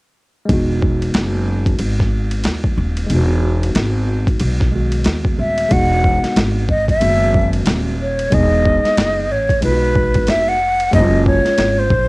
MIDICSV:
0, 0, Header, 1, 6, 480
1, 0, Start_track
1, 0, Key_signature, 4, "major"
1, 0, Tempo, 652174
1, 364, Time_signature, 4, 2, 24, 8
1, 8894, End_track
2, 0, Start_track
2, 0, Title_t, "Flute"
2, 0, Program_c, 0, 73
2, 3974, Note_on_c, 0, 76, 86
2, 4211, Note_on_c, 0, 78, 109
2, 4223, Note_off_c, 0, 76, 0
2, 4688, Note_off_c, 0, 78, 0
2, 4932, Note_on_c, 0, 75, 86
2, 5062, Note_off_c, 0, 75, 0
2, 5077, Note_on_c, 0, 76, 105
2, 5523, Note_off_c, 0, 76, 0
2, 5902, Note_on_c, 0, 73, 85
2, 6138, Note_on_c, 0, 75, 107
2, 6149, Note_off_c, 0, 73, 0
2, 6857, Note_on_c, 0, 73, 90
2, 6868, Note_off_c, 0, 75, 0
2, 7090, Note_off_c, 0, 73, 0
2, 7094, Note_on_c, 0, 71, 101
2, 7577, Note_on_c, 0, 76, 99
2, 7588, Note_off_c, 0, 71, 0
2, 7718, Note_on_c, 0, 78, 102
2, 7729, Note_off_c, 0, 76, 0
2, 8049, Note_off_c, 0, 78, 0
2, 8053, Note_on_c, 0, 75, 100
2, 8272, Note_off_c, 0, 75, 0
2, 8295, Note_on_c, 0, 73, 99
2, 8676, Note_on_c, 0, 72, 96
2, 8687, Note_off_c, 0, 73, 0
2, 8894, Note_off_c, 0, 72, 0
2, 8894, End_track
3, 0, Start_track
3, 0, Title_t, "Tine electric piano"
3, 0, Program_c, 1, 4
3, 335, Note_on_c, 1, 56, 65
3, 355, Note_on_c, 1, 59, 60
3, 373, Note_on_c, 1, 63, 56
3, 393, Note_on_c, 1, 66, 70
3, 2240, Note_off_c, 1, 56, 0
3, 2250, Note_off_c, 1, 59, 0
3, 2254, Note_on_c, 1, 56, 61
3, 2259, Note_off_c, 1, 63, 0
3, 2269, Note_off_c, 1, 66, 0
3, 2273, Note_on_c, 1, 59, 61
3, 2292, Note_on_c, 1, 63, 58
3, 2313, Note_on_c, 1, 66, 74
3, 3445, Note_off_c, 1, 56, 0
3, 3454, Note_off_c, 1, 59, 0
3, 3464, Note_off_c, 1, 63, 0
3, 3472, Note_on_c, 1, 56, 47
3, 3474, Note_off_c, 1, 66, 0
3, 3483, Note_on_c, 1, 59, 40
3, 3492, Note_on_c, 1, 51, 43
3, 3501, Note_on_c, 1, 66, 54
3, 4179, Note_off_c, 1, 56, 0
3, 4188, Note_on_c, 1, 56, 61
3, 4190, Note_off_c, 1, 59, 0
3, 4198, Note_on_c, 1, 59, 61
3, 4207, Note_on_c, 1, 63, 63
3, 4208, Note_off_c, 1, 51, 0
3, 4208, Note_off_c, 1, 66, 0
3, 4217, Note_on_c, 1, 66, 76
3, 4870, Note_off_c, 1, 56, 0
3, 4875, Note_off_c, 1, 59, 0
3, 4880, Note_off_c, 1, 63, 0
3, 4885, Note_off_c, 1, 66, 0
3, 5152, Note_on_c, 1, 56, 60
3, 5161, Note_on_c, 1, 59, 59
3, 5170, Note_on_c, 1, 51, 56
3, 5180, Note_on_c, 1, 66, 62
3, 5832, Note_off_c, 1, 56, 0
3, 5836, Note_off_c, 1, 59, 0
3, 5841, Note_off_c, 1, 51, 0
3, 5846, Note_off_c, 1, 66, 0
3, 6111, Note_on_c, 1, 56, 64
3, 6122, Note_on_c, 1, 59, 65
3, 6132, Note_on_c, 1, 63, 64
3, 6141, Note_on_c, 1, 68, 74
3, 6792, Note_off_c, 1, 56, 0
3, 6797, Note_off_c, 1, 59, 0
3, 6802, Note_off_c, 1, 63, 0
3, 6807, Note_off_c, 1, 68, 0
3, 7073, Note_on_c, 1, 56, 60
3, 7081, Note_on_c, 1, 59, 57
3, 7092, Note_on_c, 1, 63, 60
3, 7102, Note_on_c, 1, 65, 54
3, 7149, Note_on_c, 1, 66, 71
3, 7150, Note_off_c, 1, 65, 0
3, 7752, Note_off_c, 1, 56, 0
3, 7757, Note_off_c, 1, 59, 0
3, 7762, Note_off_c, 1, 63, 0
3, 7790, Note_off_c, 1, 66, 0
3, 8031, Note_on_c, 1, 56, 70
3, 8040, Note_on_c, 1, 58, 63
3, 8048, Note_on_c, 1, 61, 62
3, 8060, Note_on_c, 1, 63, 59
3, 8107, Note_on_c, 1, 65, 70
3, 8109, Note_off_c, 1, 63, 0
3, 8711, Note_off_c, 1, 56, 0
3, 8716, Note_off_c, 1, 58, 0
3, 8720, Note_off_c, 1, 61, 0
3, 8749, Note_off_c, 1, 65, 0
3, 8894, End_track
4, 0, Start_track
4, 0, Title_t, "Upright bass"
4, 0, Program_c, 2, 32
4, 362, Note_on_c, 2, 28, 90
4, 819, Note_off_c, 2, 28, 0
4, 842, Note_on_c, 2, 30, 75
4, 1299, Note_off_c, 2, 30, 0
4, 1321, Note_on_c, 2, 32, 76
4, 1778, Note_off_c, 2, 32, 0
4, 1803, Note_on_c, 2, 39, 71
4, 2031, Note_off_c, 2, 39, 0
4, 2043, Note_on_c, 2, 27, 82
4, 2271, Note_off_c, 2, 27, 0
4, 2283, Note_on_c, 2, 28, 89
4, 2739, Note_off_c, 2, 28, 0
4, 2763, Note_on_c, 2, 32, 86
4, 3128, Note_off_c, 2, 32, 0
4, 3242, Note_on_c, 2, 35, 84
4, 3699, Note_off_c, 2, 35, 0
4, 3724, Note_on_c, 2, 39, 71
4, 3964, Note_on_c, 2, 27, 72
4, 3975, Note_off_c, 2, 39, 0
4, 4192, Note_off_c, 2, 27, 0
4, 4203, Note_on_c, 2, 28, 86
4, 4568, Note_off_c, 2, 28, 0
4, 4682, Note_on_c, 2, 32, 82
4, 5139, Note_off_c, 2, 32, 0
4, 5164, Note_on_c, 2, 30, 85
4, 5620, Note_off_c, 2, 30, 0
4, 5643, Note_on_c, 2, 27, 81
4, 6099, Note_off_c, 2, 27, 0
4, 6125, Note_on_c, 2, 28, 99
4, 6489, Note_off_c, 2, 28, 0
4, 6604, Note_on_c, 2, 30, 83
4, 6843, Note_off_c, 2, 30, 0
4, 6843, Note_on_c, 2, 33, 89
4, 7071, Note_off_c, 2, 33, 0
4, 7085, Note_on_c, 2, 35, 79
4, 7564, Note_off_c, 2, 35, 0
4, 7564, Note_on_c, 2, 29, 81
4, 8020, Note_off_c, 2, 29, 0
4, 8044, Note_on_c, 2, 30, 105
4, 8409, Note_off_c, 2, 30, 0
4, 8525, Note_on_c, 2, 32, 85
4, 8752, Note_off_c, 2, 32, 0
4, 8761, Note_on_c, 2, 34, 92
4, 8894, Note_off_c, 2, 34, 0
4, 8894, End_track
5, 0, Start_track
5, 0, Title_t, "Muted upright bass strokes"
5, 3143, Note_on_c, 9, 29, 41
5, 3217, Note_off_c, 9, 29, 0
5, 4590, Note_on_c, 9, 29, 41
5, 4663, Note_off_c, 9, 29, 0
5, 6509, Note_on_c, 9, 29, 44
5, 6583, Note_off_c, 9, 29, 0
5, 8429, Note_on_c, 9, 29, 41
5, 8503, Note_off_c, 9, 29, 0
5, 8894, End_track
6, 0, Start_track
6, 0, Title_t, "Drums"
6, 362, Note_on_c, 9, 51, 65
6, 363, Note_on_c, 9, 36, 94
6, 436, Note_off_c, 9, 51, 0
6, 437, Note_off_c, 9, 36, 0
6, 607, Note_on_c, 9, 36, 82
6, 680, Note_off_c, 9, 36, 0
6, 751, Note_on_c, 9, 51, 44
6, 824, Note_off_c, 9, 51, 0
6, 838, Note_on_c, 9, 44, 44
6, 838, Note_on_c, 9, 51, 60
6, 844, Note_on_c, 9, 38, 95
6, 912, Note_off_c, 9, 44, 0
6, 912, Note_off_c, 9, 51, 0
6, 918, Note_off_c, 9, 38, 0
6, 1223, Note_on_c, 9, 36, 81
6, 1227, Note_on_c, 9, 51, 49
6, 1296, Note_off_c, 9, 36, 0
6, 1301, Note_off_c, 9, 51, 0
6, 1315, Note_on_c, 9, 51, 77
6, 1388, Note_off_c, 9, 51, 0
6, 1469, Note_on_c, 9, 38, 29
6, 1473, Note_on_c, 9, 36, 74
6, 1543, Note_off_c, 9, 38, 0
6, 1546, Note_off_c, 9, 36, 0
6, 1701, Note_on_c, 9, 51, 55
6, 1774, Note_off_c, 9, 51, 0
6, 1793, Note_on_c, 9, 44, 47
6, 1793, Note_on_c, 9, 51, 67
6, 1804, Note_on_c, 9, 38, 91
6, 1867, Note_off_c, 9, 44, 0
6, 1867, Note_off_c, 9, 51, 0
6, 1878, Note_off_c, 9, 38, 0
6, 1942, Note_on_c, 9, 36, 85
6, 2016, Note_off_c, 9, 36, 0
6, 2184, Note_on_c, 9, 51, 52
6, 2258, Note_off_c, 9, 51, 0
6, 2280, Note_on_c, 9, 51, 66
6, 2354, Note_off_c, 9, 51, 0
6, 2672, Note_on_c, 9, 51, 47
6, 2746, Note_off_c, 9, 51, 0
6, 2760, Note_on_c, 9, 44, 43
6, 2760, Note_on_c, 9, 51, 60
6, 2766, Note_on_c, 9, 38, 98
6, 2833, Note_off_c, 9, 44, 0
6, 2833, Note_off_c, 9, 51, 0
6, 2839, Note_off_c, 9, 38, 0
6, 3143, Note_on_c, 9, 36, 83
6, 3148, Note_on_c, 9, 51, 49
6, 3217, Note_off_c, 9, 36, 0
6, 3221, Note_off_c, 9, 51, 0
6, 3235, Note_on_c, 9, 51, 83
6, 3308, Note_off_c, 9, 51, 0
6, 3388, Note_on_c, 9, 38, 32
6, 3393, Note_on_c, 9, 36, 77
6, 3462, Note_off_c, 9, 38, 0
6, 3466, Note_off_c, 9, 36, 0
6, 3620, Note_on_c, 9, 51, 54
6, 3694, Note_off_c, 9, 51, 0
6, 3712, Note_on_c, 9, 44, 52
6, 3712, Note_on_c, 9, 51, 64
6, 3723, Note_on_c, 9, 38, 92
6, 3786, Note_off_c, 9, 44, 0
6, 3786, Note_off_c, 9, 51, 0
6, 3797, Note_off_c, 9, 38, 0
6, 3862, Note_on_c, 9, 36, 83
6, 3936, Note_off_c, 9, 36, 0
6, 4104, Note_on_c, 9, 51, 52
6, 4178, Note_off_c, 9, 51, 0
6, 4201, Note_on_c, 9, 51, 68
6, 4204, Note_on_c, 9, 36, 109
6, 4275, Note_off_c, 9, 51, 0
6, 4277, Note_off_c, 9, 36, 0
6, 4447, Note_on_c, 9, 36, 81
6, 4521, Note_off_c, 9, 36, 0
6, 4591, Note_on_c, 9, 38, 30
6, 4593, Note_on_c, 9, 51, 51
6, 4664, Note_off_c, 9, 38, 0
6, 4667, Note_off_c, 9, 51, 0
6, 4683, Note_on_c, 9, 44, 43
6, 4683, Note_on_c, 9, 51, 69
6, 4689, Note_on_c, 9, 38, 109
6, 4757, Note_off_c, 9, 44, 0
6, 4757, Note_off_c, 9, 51, 0
6, 4763, Note_off_c, 9, 38, 0
6, 4922, Note_on_c, 9, 36, 73
6, 4996, Note_off_c, 9, 36, 0
6, 5065, Note_on_c, 9, 36, 85
6, 5071, Note_on_c, 9, 51, 53
6, 5139, Note_off_c, 9, 36, 0
6, 5145, Note_off_c, 9, 51, 0
6, 5159, Note_on_c, 9, 51, 82
6, 5233, Note_off_c, 9, 51, 0
6, 5405, Note_on_c, 9, 36, 93
6, 5479, Note_off_c, 9, 36, 0
6, 5543, Note_on_c, 9, 51, 55
6, 5617, Note_off_c, 9, 51, 0
6, 5636, Note_on_c, 9, 44, 50
6, 5636, Note_on_c, 9, 51, 70
6, 5647, Note_on_c, 9, 38, 99
6, 5709, Note_off_c, 9, 44, 0
6, 5709, Note_off_c, 9, 51, 0
6, 5720, Note_off_c, 9, 38, 0
6, 6028, Note_on_c, 9, 51, 51
6, 6102, Note_off_c, 9, 51, 0
6, 6124, Note_on_c, 9, 51, 69
6, 6126, Note_on_c, 9, 36, 99
6, 6198, Note_off_c, 9, 51, 0
6, 6199, Note_off_c, 9, 36, 0
6, 6370, Note_on_c, 9, 36, 81
6, 6444, Note_off_c, 9, 36, 0
6, 6513, Note_on_c, 9, 38, 27
6, 6516, Note_on_c, 9, 51, 47
6, 6587, Note_off_c, 9, 38, 0
6, 6589, Note_off_c, 9, 51, 0
6, 6605, Note_on_c, 9, 44, 49
6, 6605, Note_on_c, 9, 51, 62
6, 6611, Note_on_c, 9, 38, 107
6, 6678, Note_off_c, 9, 44, 0
6, 6678, Note_off_c, 9, 51, 0
6, 6684, Note_off_c, 9, 38, 0
6, 6986, Note_on_c, 9, 36, 91
6, 6992, Note_on_c, 9, 51, 55
6, 7060, Note_off_c, 9, 36, 0
6, 7065, Note_off_c, 9, 51, 0
6, 7081, Note_on_c, 9, 51, 82
6, 7154, Note_off_c, 9, 51, 0
6, 7326, Note_on_c, 9, 36, 94
6, 7400, Note_off_c, 9, 36, 0
6, 7465, Note_on_c, 9, 51, 58
6, 7472, Note_on_c, 9, 36, 85
6, 7538, Note_off_c, 9, 51, 0
6, 7546, Note_off_c, 9, 36, 0
6, 7558, Note_on_c, 9, 44, 47
6, 7558, Note_on_c, 9, 51, 71
6, 7568, Note_on_c, 9, 38, 95
6, 7631, Note_off_c, 9, 44, 0
6, 7631, Note_off_c, 9, 51, 0
6, 7642, Note_off_c, 9, 38, 0
6, 7948, Note_on_c, 9, 51, 54
6, 8021, Note_off_c, 9, 51, 0
6, 8045, Note_on_c, 9, 36, 101
6, 8045, Note_on_c, 9, 51, 69
6, 8119, Note_off_c, 9, 36, 0
6, 8119, Note_off_c, 9, 51, 0
6, 8289, Note_on_c, 9, 36, 81
6, 8362, Note_off_c, 9, 36, 0
6, 8430, Note_on_c, 9, 38, 30
6, 8432, Note_on_c, 9, 51, 48
6, 8504, Note_off_c, 9, 38, 0
6, 8506, Note_off_c, 9, 51, 0
6, 8520, Note_on_c, 9, 44, 43
6, 8520, Note_on_c, 9, 51, 64
6, 8526, Note_on_c, 9, 38, 99
6, 8594, Note_off_c, 9, 44, 0
6, 8594, Note_off_c, 9, 51, 0
6, 8600, Note_off_c, 9, 38, 0
6, 8761, Note_on_c, 9, 36, 74
6, 8835, Note_off_c, 9, 36, 0
6, 8894, End_track
0, 0, End_of_file